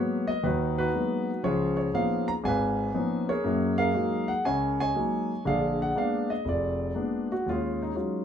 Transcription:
Already playing: F#3 G#3 A#3 B3 A#4 B4 C#5
0.27 D#5
0.43 D#2 D#3 D#4 F#4 B4
0.78 D#4 F#4 B4
0.94 F#3 G#3 A#3 B3
1.43 C#2 F3 F4 G#4 C#5
1.77 C#5
1.94 F3 A#3 B3 C#4 D#4 F5
2.28 A#5
2.44 G#1 G#2 B4 F5 G#5
2.94 F3 A#3 B3 C#4 D#4
3.29 G#4 A#4 C#5
3.44 F#2 A#3
3.78 G#4 A#4 F5
3.94 F#3 G#3 A#3 D#4
4.28 F#5
4.45 C#2 C#5 D#5 G#5
4.80 C#5 D#5 G#5
4.95 F#3 G#3 A#3 D#4
5.45 A#1 D3 G#4 D5 F5
5.82 F#5
5.95 G#3 A#3 B3 D4 F5
6.30 D#5
6.45 F1 F4 G#4 D5
6.95 G#3 A#3 B3 D4
7.32 F#4
7.46 D#2 G#3 C#4 F4
7.82 D#4
7.95 F#3 G#3 C#4 D#4 F4

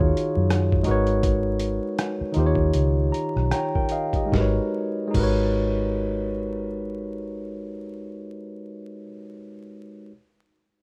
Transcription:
Already playing: D#2 D#3 D#4 F4 F#4 G#4 C#5
0.01 kick
0.17 closed hi-hat
0.37 F#2
0.50 cross-stick, closed hi-hat
0.72 kick
0.83 G#3 D#4 F#4, closed hi-hat
0.88 G#1 A#4 B4 C#5
1.07 closed hi-hat
1.23 kick, closed hi-hat
1.60 closed hi-hat
1.98 cross-stick, closed hi-hat
2.21 muted fingered electric bass stroke
2.32 D#3 D#4, closed hi-hat
2.36 D#2 F4 G4 C5
2.46 C#5
2.55 kick
2.74 C#2, closed hi-hat
3.12 A#5, closed hi-hat
3.36 B1, cross-stick
3.51 C#5 G5 A#5, cross-stick, closed hi-hat
3.75 A#4 G5, kick
3.89 D#5 F5, closed hi-hat
4.13 G4 D#5, kick, closed hi-hat
4.26 G#3 D#4
4.31 G#1 F#4 A#4, kick, snare
4.38 B4 C#5
5.07 G#3 D#4
5.14 G#1 F#4 A#4, kick, crash
5.20 B4 C#5

